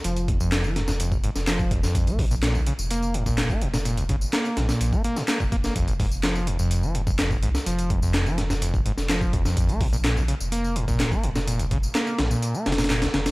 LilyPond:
<<
  \new Staff \with { instrumentName = "Acid bass" } { \clef bass \time 4/4 \key bes \dorian \tempo 4 = 126 f8 ees,16 f,8 f16 f,16 f,16 f,16 f,,16 aes,16 r16 f8 ees,16 f,16~ | f,16 bes16 bes,16 bes,16 bes,16 bes,,16 des16 r16 bes8 aes,16 bes,8 bes16 bes,16 bes,16 | bes,16 bes,,16 des16 r16 bes8 aes,16 bes,8 bes16 bes16 bes,16 bes16 bes,16 bes16 bes16 | f,16 f,,16 aes,16 r16 f8 ees,16 f,8 f16 f,16 f,16 f,16 f,,16 aes,16 r16 |
f8 ees,16 f,8 f16 f,16 f,16 f,16 f,,16 aes,16 r16 f8 ees,16 f,16~ | f,16 bes16 bes,16 bes,16 bes,16 bes,,16 des16 r16 bes8 aes,16 bes,8 bes16 bes,16 bes,16 | bes,16 bes,,16 des16 r16 bes8 aes,16 bes,8 bes16 bes,16 bes,16 bes,16 bes,,16 des16 r16 | }
  \new Staff \with { instrumentName = "Sub bass" } { \clef bass \time 4/4 \key bes \dorian f,,2~ f,,8 r16 f,,4 r16 | bes,,4. r16 f,,4. r16 f,,8~ | f,,8. r8. bes,,16 r16 bes,,16 r4 f,,8 r16 | f,,2.~ f,,8 c,16 r16 |
f,,2~ f,,8 r16 f,,4 r16 | bes,,4. r16 f,,4. r16 f,,8~ | f,,8. r8. bes,,16 r8. f,,8. r16 f,,16 r16 | }
  \new DrumStaff \with { instrumentName = "Drums" } \drummode { \time 4/4 <hh tamb>16 <hh tamb>16 <hh bd>16 tamb16 <hc hh sn tamb>16 tamb16 <hh sn>16 <sn tamb>16 <hh tamb>16 <bd tamb>16 hh16 <sn tamb>16 <hc hh sn tamb>16 <bd tamb>16 <hh bd>16 <sn tamb>16 | <hh bd tamb>16 <hh tamb>16 <hho bd>16 tamb16 <hc hh sn tamb>16 tamb16 hh16 tamb16 <hh tamb>16 tamb16 hh16 <bd tamb>16 <hc hh sn tamb>16 <bd tamb>16 hh16 <sn tamb>16 | <hh tamb>16 <hh tamb>16 <hh bd>16 tamb16 <hc hh sn tamb>16 tamb16 <hh sn>16 <sn tamb>16 <hh tamb>16 <bd tamb>16 hh16 <sn tamb>16 <hc hh sn tamb>16 <bd tamb>16 <hh bd>16 <sn tamb>16 | <hh bd tamb>16 <hh tamb>16 <hho bd>16 tamb16 <hc hh sn tamb>16 tamb16 hh16 tamb16 <hh tamb>16 tamb16 hh16 <bd tamb>16 <hc hh sn tamb>16 <bd tamb>16 hh16 <sn tamb>16 |
<hh tamb>16 <hh tamb>16 <hh bd>16 tamb16 <hc hh sn tamb>16 tamb16 <hh sn>16 <sn tamb>16 <hh tamb>16 <bd tamb>16 hh16 <sn tamb>16 <hc hh sn tamb>16 <bd tamb>16 <hh bd>16 <sn tamb>16 | <hh bd tamb>16 <hh tamb>16 <hho bd>16 tamb16 <hc hh sn tamb>16 tamb16 hh16 tamb16 <hh tamb>16 tamb16 hh16 <bd tamb>16 <hc hh sn tamb>16 <bd tamb>16 hh16 <sn tamb>16 | <hh tamb>16 <hh tamb>16 <hh bd>16 tamb16 <hc hh sn tamb>16 tamb16 <hh sn>16 tamb16 <hh tamb>16 tamb16 <hh sn>32 <hh sn>32 <hh sn tamb>32 <hh sn>32 <hc hh sn tamb>16 <hh sn tamb>16 <hh sn>16 <hh sn tamb>16 | }
>>